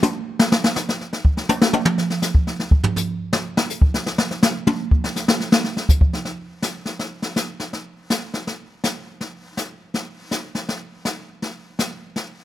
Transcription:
0.03 hi-hat pedal, high tom
0.39 snare
0.52 snare
0.64 snare
0.76 snare, hi-hat pedal
0.89 snare
1.01 snare
1.13 snare
1.25 kick
1.37 snare
1.49 hi-hat pedal, high tom
1.61 snare
1.73 high tom
1.85 mid tom
1.98 snare
2.10 snare
2.22 snare, hi-hat pedal
2.35 kick
2.47 snare
2.60 snare
2.71 kick
2.83 floor tom
2.96 floor tom, hi-hat pedal
3.33 snare
3.57 snare
3.70 hi-hat pedal
3.82 kick
3.94 snare
4.06 snare
4.18 snare
4.31 snare
4.43 snare, hi-hat pedal
4.67 high tom
4.91 kick
5.04 snare
5.16 snare, hi-hat pedal
5.28 snare
5.40 snare
5.52 snare
5.64 snare
5.77 snare
5.89 kick, hi-hat pedal
6.01 kick
6.13 snare
6.25 brush sweep, snare
6.62 snare, hi-hat pedal
6.85 snare
6.99 brush sweep, snare
7.22 snare
7.36 snare, hi-hat pedal
7.60 snare
7.73 brush sweep, snare
8.10 snare, hi-hat pedal
8.34 snare
8.47 brush sweep, snare
8.84 snare, hi-hat pedal
9.21 brush sweep, snare
9.57 snare, hi-hat pedal
9.94 brush sweep, snare
10.31 snare, hi-hat pedal
10.55 snare
10.69 brush sweep, snare
11.05 snare, hi-hat pedal
11.42 brush sweep, snare
11.79 snare, hi-hat pedal
12.16 brush sweep, snare

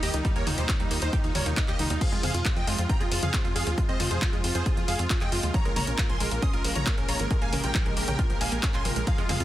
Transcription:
Already playing: D#3 G3 A#3 G4
0.03 D#2 G4 D#5, open hi-hat
0.13 C#2 D#3 D#4, closed hi-hat
0.25 G3 D#4 F4, kick, closed hi-hat
0.36 D#2 A#3 A#4 C#5, closed hi-hat
0.47 D#2 D#4, open hi-hat, mid tom
0.58 D#2 D#4 G4 C5, closed hi-hat
0.69 D#3 D#4, kick, clap, closed hi-hat
0.80 D#2 G3 D#4, closed hi-hat
0.91 D#2 A#3 D#4, open hi-hat
1.02 D#2 D#4 C5, closed hi-hat
1.13 D#4 G4, kick, closed hi-hat
1.24 D#2 D#3 D#4, closed hi-hat
1.35 D#2 G3 A#4 C#5, open hi-hat, mid tom
1.46 D#2 A#3 D#4, closed hi-hat
1.57 D#4, kick, clap, closed hi-hat
1.68 D#2 G4 D#5, clap, closed hi-hat
1.79 C#2 D#3 D#4, open hi-hat, mid tom
1.90 D#2 G3 D#4, closed hi-hat
2.01 C3 F3 G#3 G#4 F5, kick, closed hi-hat, crash
2.12 F2 G#3 F4, closed hi-hat
2.23 F2 C4 G#4 F5, open hi-hat, mid tom
2.34 F2 F4, closed hi-hat
2.45 F4 G#4, kick, clap, closed hi-hat
2.56 F2 F3 D#5 G5, closed hi-hat
2.67 F2 G#3 F4, open hi-hat
2.78 F2 C4 F4, closed hi-hat
2.89 F4 G5 A#5, kick, closed hi-hat
3.00 F2 F4 G#4, closed hi-hat
3.11 F2 F3 F4, open hi-hat
3.23 F2 F3 G#4 F5, closed hi-hat, mid tom
3.34 C4 F4, kick, clap, closed hi-hat
3.44 F2 F4, closed hi-hat
3.55 F2 G#4 F5, open hi-hat
3.67 D#2 F3 F4, closed hi-hat
3.78 G#3 F4, kick, closed hi-hat
3.89 F2 C4 C5 D#5, closed hi-hat
4.00 F2 F4, open hi-hat, mid tom
4.11 F2 G#4 C5, closed hi-hat
4.22 F3 F4, kick, clap, closed hi-hat
4.33 F2 G#3 F4, closed hi-hat
4.44 F2 C4 F4, open hi-hat
4.55 F2 F4 G#4 C5, closed hi-hat
4.66 F4 G#4, kick, closed hi-hat
4.77 F2 F3 F4, closed hi-hat
4.88 F2 G#3 G#4 F5, open hi-hat
4.99 F2 C4 F4, closed hi-hat
5.10 F4, kick, clap, closed hi-hat
5.21 F2 G#4 D#5 G5, clap, closed hi-hat
5.32 F2 F3 F4, open hi-hat
5.43 D#2 G#3 F4, closed hi-hat
5.54 C#3 F3 A#3 C#5 A#5, kick, closed hi-hat
5.65 A#1 G#3 A#4, closed hi-hat
5.76 A#1 A#3 C#5 A#5, open hi-hat, mid tom
5.87 A#1 C#4 A#4, closed hi-hat
5.98 F4 A#4, kick, clap, closed hi-hat
6.09 A#1 F3 G#5 C6, closed hi-hat
6.20 A#1 G#3 A#4, open hi-hat
6.31 A#1 A#3 A#4, closed hi-hat
6.42 C#4 C6 D#6, kick, closed hi-hat
6.53 A#1 F4 A#4, closed hi-hat
6.64 A#1 F3 A#4, open hi-hat
6.75 A#1 F3 C#5 A#5, closed hi-hat, mid tom
6.86 A#3 A#4, kick, clap, closed hi-hat
6.98 A#1 C#4 A#4, closed hi-hat
7.09 A#1 F4 C#5 A#5, open hi-hat
7.20 G#1 F3 A#4, closed hi-hat
7.30 G#3 G4 A#4, kick, closed hi-hat
7.41 A#1 A#3 F5 G#5, closed hi-hat
7.53 A#1 C#4 A#4, open hi-hat, mid tom
7.64 A#1 F4 A#4 G5, closed hi-hat
7.75 F3 A#4, kick, clap, closed hi-hat
7.86 A#1 G#3 A#4, closed hi-hat
7.97 A#1 A#3 A#4, open hi-hat
8.08 A#1 C#4 A#4 G5, closed hi-hat, mid tom
8.19 F4 A#4, kick, closed hi-hat
8.30 A#1 F3 A#4, closed hi-hat
8.41 A#1 G#3 F5 G#5, open hi-hat
8.52 A#1 A#3 A#4, closed hi-hat
8.63 C#4 A#4, kick, clap, closed hi-hat
8.74 A#1 F4 G#5 C6, clap, closed hi-hat
8.85 G#1 F3 A#4, open hi-hat, mid tom
8.96 A#1 G#3 A#4, closed hi-hat
9.07 C3 F3 F4 G#4 F5, kick, closed hi-hat, ride
9.18 F2 G#3 F4, closed hi-hat
9.29 F2 C4 G#4 F5, open hi-hat, mid tom, ride
9.40 F2 F4, closed hi-hat

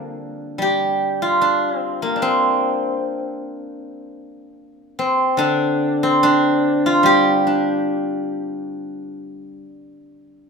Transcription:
Already playing: D3 F3 G3 A#3 C4 D4
0.58 G3 G4
1.22 F4
1.41 D4
1.77 C4
2.02 A#3
2.16 D4
2.22 C4
4.99 C4
5.37 D3 D4
6.03 C4
6.23 D4
6.86 F4
7.03 G3 G4
7.47 D4

